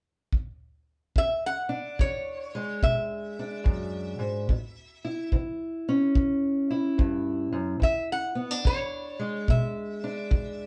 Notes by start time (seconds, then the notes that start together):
0.32 kick
1.16 E2 E5, kick
1.46 F#5
1.69 D4
1.99 E3 C#5, kick
2.55 G#3
2.83 B2 E5, kick
3.39 D4
3.64 F#2, kick
4.19 G#2
4.49 A2, kick
5.05 E4
5.32 E3, kick
5.89 C#4
6.15 E3, kick
6.71 E4
6.98 G2, kick
7.52 F#2
7.80 E2 E5, kick
8.12 F#5
8.35 B3
8.51 D4
8.65 E3 C#5, kick
9.19 G#3
9.48 B2 E5, kick
10.04 D4
10.31 E3, kick